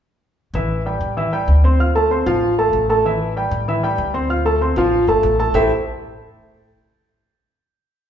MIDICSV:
0, 0, Header, 1, 3, 480
1, 0, Start_track
1, 0, Key_signature, 0, "minor"
1, 0, Tempo, 311850
1, 833, Time_signature, 4, 2, 24, 8
1, 12461, End_track
2, 0, Start_track
2, 0, Title_t, "Grand piano"
2, 0, Program_c, 0, 0
2, 842, Note_on_c, 0, 52, 78
2, 846, Note_on_c, 0, 64, 70
2, 847, Note_on_c, 0, 76, 77
2, 1233, Note_off_c, 0, 52, 0
2, 1236, Note_off_c, 0, 64, 0
2, 1236, Note_off_c, 0, 76, 0
2, 1320, Note_on_c, 0, 55, 64
2, 1325, Note_on_c, 0, 67, 69
2, 1332, Note_on_c, 0, 79, 68
2, 1713, Note_off_c, 0, 55, 0
2, 1716, Note_off_c, 0, 67, 0
2, 1720, Note_off_c, 0, 79, 0
2, 1798, Note_on_c, 0, 52, 75
2, 1802, Note_on_c, 0, 64, 74
2, 1810, Note_on_c, 0, 76, 70
2, 1995, Note_off_c, 0, 52, 0
2, 1997, Note_off_c, 0, 64, 0
2, 2002, Note_off_c, 0, 76, 0
2, 2039, Note_on_c, 0, 55, 74
2, 2044, Note_on_c, 0, 67, 74
2, 2046, Note_on_c, 0, 79, 78
2, 2434, Note_off_c, 0, 55, 0
2, 2437, Note_off_c, 0, 67, 0
2, 2438, Note_off_c, 0, 79, 0
2, 2525, Note_on_c, 0, 60, 77
2, 2532, Note_on_c, 0, 72, 73
2, 2539, Note_on_c, 0, 84, 69
2, 2720, Note_off_c, 0, 60, 0
2, 2725, Note_off_c, 0, 72, 0
2, 2729, Note_off_c, 0, 84, 0
2, 2764, Note_on_c, 0, 65, 63
2, 2771, Note_on_c, 0, 77, 67
2, 2774, Note_on_c, 0, 89, 71
2, 2961, Note_off_c, 0, 65, 0
2, 2965, Note_off_c, 0, 77, 0
2, 2966, Note_off_c, 0, 89, 0
2, 3004, Note_on_c, 0, 57, 75
2, 3010, Note_on_c, 0, 69, 67
2, 3011, Note_on_c, 0, 81, 75
2, 3201, Note_off_c, 0, 57, 0
2, 3204, Note_off_c, 0, 69, 0
2, 3205, Note_off_c, 0, 81, 0
2, 3240, Note_on_c, 0, 60, 61
2, 3247, Note_on_c, 0, 72, 68
2, 3254, Note_on_c, 0, 84, 70
2, 3439, Note_off_c, 0, 60, 0
2, 3443, Note_off_c, 0, 72, 0
2, 3448, Note_off_c, 0, 84, 0
2, 3484, Note_on_c, 0, 53, 77
2, 3486, Note_on_c, 0, 65, 78
2, 3494, Note_on_c, 0, 77, 92
2, 3880, Note_off_c, 0, 53, 0
2, 3882, Note_off_c, 0, 65, 0
2, 3886, Note_off_c, 0, 77, 0
2, 3975, Note_on_c, 0, 57, 73
2, 3981, Note_on_c, 0, 69, 70
2, 3983, Note_on_c, 0, 81, 74
2, 4367, Note_off_c, 0, 57, 0
2, 4371, Note_off_c, 0, 69, 0
2, 4372, Note_off_c, 0, 81, 0
2, 4453, Note_on_c, 0, 57, 82
2, 4459, Note_on_c, 0, 69, 77
2, 4462, Note_on_c, 0, 81, 72
2, 4650, Note_off_c, 0, 57, 0
2, 4653, Note_off_c, 0, 69, 0
2, 4655, Note_off_c, 0, 81, 0
2, 4698, Note_on_c, 0, 52, 75
2, 4703, Note_on_c, 0, 64, 78
2, 4710, Note_on_c, 0, 76, 79
2, 5091, Note_off_c, 0, 52, 0
2, 5093, Note_off_c, 0, 64, 0
2, 5098, Note_off_c, 0, 76, 0
2, 5179, Note_on_c, 0, 55, 70
2, 5184, Note_on_c, 0, 67, 65
2, 5188, Note_on_c, 0, 79, 72
2, 5572, Note_off_c, 0, 55, 0
2, 5574, Note_off_c, 0, 67, 0
2, 5577, Note_off_c, 0, 79, 0
2, 5662, Note_on_c, 0, 52, 69
2, 5667, Note_on_c, 0, 64, 76
2, 5673, Note_on_c, 0, 76, 80
2, 5856, Note_off_c, 0, 52, 0
2, 5860, Note_off_c, 0, 64, 0
2, 5863, Note_off_c, 0, 76, 0
2, 5898, Note_on_c, 0, 55, 76
2, 5902, Note_on_c, 0, 67, 71
2, 5909, Note_on_c, 0, 79, 76
2, 6291, Note_off_c, 0, 55, 0
2, 6294, Note_off_c, 0, 67, 0
2, 6298, Note_off_c, 0, 79, 0
2, 6372, Note_on_c, 0, 60, 75
2, 6377, Note_on_c, 0, 72, 79
2, 6382, Note_on_c, 0, 84, 75
2, 6571, Note_off_c, 0, 60, 0
2, 6574, Note_off_c, 0, 72, 0
2, 6577, Note_off_c, 0, 84, 0
2, 6613, Note_on_c, 0, 65, 69
2, 6618, Note_on_c, 0, 77, 71
2, 6621, Note_on_c, 0, 89, 68
2, 6812, Note_off_c, 0, 65, 0
2, 6814, Note_off_c, 0, 77, 0
2, 6816, Note_off_c, 0, 89, 0
2, 6854, Note_on_c, 0, 57, 78
2, 6857, Note_on_c, 0, 69, 80
2, 6863, Note_on_c, 0, 81, 75
2, 7052, Note_off_c, 0, 57, 0
2, 7054, Note_off_c, 0, 69, 0
2, 7058, Note_off_c, 0, 81, 0
2, 7099, Note_on_c, 0, 60, 69
2, 7108, Note_on_c, 0, 72, 62
2, 7109, Note_on_c, 0, 84, 72
2, 7295, Note_off_c, 0, 60, 0
2, 7300, Note_off_c, 0, 72, 0
2, 7301, Note_off_c, 0, 84, 0
2, 7342, Note_on_c, 0, 53, 91
2, 7348, Note_on_c, 0, 65, 85
2, 7353, Note_on_c, 0, 77, 91
2, 7733, Note_off_c, 0, 53, 0
2, 7736, Note_off_c, 0, 65, 0
2, 7739, Note_off_c, 0, 77, 0
2, 7820, Note_on_c, 0, 57, 81
2, 7825, Note_on_c, 0, 69, 74
2, 7829, Note_on_c, 0, 81, 78
2, 8211, Note_off_c, 0, 57, 0
2, 8214, Note_off_c, 0, 69, 0
2, 8216, Note_off_c, 0, 81, 0
2, 8298, Note_on_c, 0, 57, 72
2, 8302, Note_on_c, 0, 69, 83
2, 8307, Note_on_c, 0, 81, 77
2, 8493, Note_off_c, 0, 57, 0
2, 8495, Note_off_c, 0, 69, 0
2, 8498, Note_off_c, 0, 81, 0
2, 8531, Note_on_c, 0, 57, 82
2, 8533, Note_on_c, 0, 64, 83
2, 8535, Note_on_c, 0, 67, 85
2, 8537, Note_on_c, 0, 69, 79
2, 8540, Note_on_c, 0, 72, 80
2, 8541, Note_on_c, 0, 76, 100
2, 8755, Note_off_c, 0, 57, 0
2, 8756, Note_off_c, 0, 64, 0
2, 8757, Note_off_c, 0, 67, 0
2, 8758, Note_off_c, 0, 69, 0
2, 8759, Note_off_c, 0, 72, 0
2, 8760, Note_off_c, 0, 76, 0
2, 12461, End_track
3, 0, Start_track
3, 0, Title_t, "Upright bass"
3, 0, Program_c, 1, 32
3, 825, Note_on_c, 1, 33, 87
3, 1500, Note_off_c, 1, 33, 0
3, 1549, Note_on_c, 1, 45, 79
3, 2225, Note_off_c, 1, 45, 0
3, 2273, Note_on_c, 1, 38, 82
3, 3397, Note_off_c, 1, 38, 0
3, 3484, Note_on_c, 1, 33, 88
3, 4158, Note_off_c, 1, 33, 0
3, 4202, Note_on_c, 1, 33, 84
3, 5325, Note_off_c, 1, 33, 0
3, 5409, Note_on_c, 1, 45, 89
3, 6083, Note_off_c, 1, 45, 0
3, 6129, Note_on_c, 1, 38, 85
3, 7248, Note_off_c, 1, 38, 0
3, 7329, Note_on_c, 1, 33, 87
3, 7779, Note_off_c, 1, 33, 0
3, 7807, Note_on_c, 1, 31, 70
3, 8034, Note_off_c, 1, 31, 0
3, 8052, Note_on_c, 1, 33, 93
3, 8476, Note_off_c, 1, 33, 0
3, 8528, Note_on_c, 1, 33, 93
3, 8753, Note_off_c, 1, 33, 0
3, 12461, End_track
0, 0, End_of_file